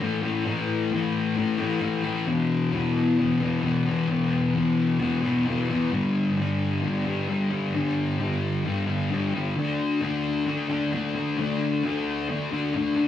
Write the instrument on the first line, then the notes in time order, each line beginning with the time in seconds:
distorted electric guitar
0.00 A2 E3 A3
0.22 E3 A3
0.45 A2 E3 A3
0.91 A2 E3 A3
1.36 A2 E3 A3
1.59 E3 A3
1.81 A2 E3 A3
2.03 E3 A3
2.26 E2 B2 E3
2.71 E2 B2 E3
3.17 E2 B2 E3
3.39 B2 E3
3.62 E2 B2 E3
3.86 B2 E3
4.08 E2 B2 E3
4.54 E2 B2 E3
4.99 E2 B2 E3
5.23 B2 E3
5.46 E2 B2 E3
5.69 B2 E3
5.91 G2 D3 G3
6.37 G2 D3 G3
6.82 G2 D3 G3
7.06 D3 G3
7.29 G2 D3 G3
7.50 D3 G3
7.74 G2 D3 G3
8.19 G2 D3 G3
8.64 G2 D3 G3
8.86 D3 G3
9.10 G2 D3 G3
9.34 D3 G3
9.56 D3 A3 D4
10.01 D3 A3 D4
10.47 D3 A3 D4
10.70 A3 D4
10.93 D3 A3 D4
11.15 A3 D4
11.38 D3 A3 D4
11.83 D3 A3 D4
12.28 D3 A3 D4
12.51 A3 D4
12.74 D3 A3 D4
12.96 A3 D4